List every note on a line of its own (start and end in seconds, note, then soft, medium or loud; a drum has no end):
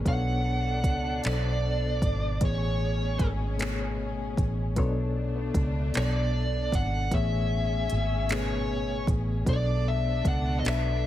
0.05 0.85 B1 loud
0.05 0.82 B2 medium
0.05 2.39 B2 medium
0.05 2.39 A3 medium
0.05 0.83 B3 medium
0.05 2.39 D4 medium
0.05 0.83 D4 medium
0.05 0.84 A4 medium
0.05 0.84 C#5 medium
0.05 1.21 F#5 loud
0.05 kick loud
0.05 closed hi-hat medium
0.84 1.20 C#2 loud
0.84 kick loud
0.84 closed hi-hat medium
1.24 1.99 B1 medium
1.24 2.00 B2 medium
1.24 2.00 B3 medium
1.24 2.01 D4 medium
1.24 2.01 A4 medium
1.24 1.32 C5 medium
1.24 2.45 D5 medium
1.24 clap loud
1.24 closed hi-hat medium
1.33 2.05 D5 medium
2.02 2.38 G#1 medium
2.02 kick loud
2.02 closed hi-hat medium
2.41 3.16 A1 loud
2.41 3.17 A2 medium
2.41 4.75 B2 medium
2.41 3.18 A3 medium
2.41 3.18 B3 medium
2.41 4.75 C#4 medium
2.41 4.75 G#4 medium
2.41 3.19 G#4 medium
2.41 3.19 C#5 medium
2.41 kick loud
2.41 closed hi-hat medium
2.45 3.27 C#5 medium
3.19 4.34 G#1 loud
3.19 kick loud
3.19 closed hi-hat medium
3.58 4.35 B2 medium
3.58 4.35 A3 medium
3.58 4.36 B3 medium
3.58 4.36 G#4 medium
3.58 4.36 C#5 medium
3.58 clap loud
3.58 closed hi-hat medium
4.37 4.77 A1 medium
4.37 kick medium
4.37 closed hi-hat medium
4.76 5.51 B1 loud
4.76 5.53 B2 medium
4.76 7.09 B2 medium
4.76 7.09 A3 medium
4.76 5.53 B3 medium
4.76 4.83 C#4 medium
4.76 7.10 D4 medium
4.76 5.54 A4 medium
4.76 5.54 C#5 loud
4.76 kick loud
4.76 closed hi-hat medium
4.84 5.57 D4 medium
5.54 5.90 C#2 loud
5.54 kick loud
5.54 closed hi-hat medium
5.94 6.70 B1 medium
5.94 6.71 B2 medium
5.94 6.71 B3 medium
5.94 6.72 D4 medium
5.94 6.72 A4 medium
5.94 6.76 D5 medium
5.94 6.72 D5 medium
5.94 clap loud
5.94 closed hi-hat medium
6.72 7.08 G#1 medium
6.72 7.14 F#5 loud
6.72 kick medium
6.72 closed hi-hat medium
7.10 7.86 A1 loud
7.10 7.88 A2 medium
7.10 9.44 B2 medium
7.10 7.88 A3 medium
7.10 7.89 B3 medium
7.10 9.44 C#4 medium
7.10 9.44 G#4 medium
7.10 7.89 G#4 medium
7.10 7.89 C#5 medium
7.10 kick loud
7.10 closed hi-hat medium
7.15 8.34 E5 loud
7.90 9.05 G#1 medium
7.90 closed hi-hat medium
8.29 9.06 B2 medium
8.29 9.06 A3 medium
8.29 9.06 B3 medium
8.29 9.07 G#4 medium
8.29 9.07 B4 medium
8.29 9.05 C#5 medium
8.29 clap loud
8.29 closed hi-hat medium
9.07 9.43 A1 medium
9.07 kick loud
9.07 closed hi-hat medium
9.46 10.22 B1 loud
9.46 10.23 B2 medium
9.46 11.07 B2 medium
9.46 11.07 A3 medium
9.46 10.24 B3 medium
9.46 11.07 D4 loud
9.46 10.24 D4 medium
9.46 10.24 A4 medium
9.46 9.55 C5 medium
9.46 9.88 D5 loud
9.46 kick loud
9.46 closed hi-hat medium
9.56 10.28 D5 medium
9.88 10.28 E5 loud
10.25 10.61 C#2 medium
10.25 10.59 F#5 loud
10.25 kick loud
10.25 closed hi-hat medium
10.60 10.66 D#5 medium
10.64 11.07 B1 medium
10.64 11.07 B2 medium
10.64 11.07 B3 medium
10.64 11.07 D4 medium
10.64 11.07 A4 medium
10.64 11.07 B4 medium
10.64 11.06 E5 medium
10.64 clap loud
10.64 closed hi-hat medium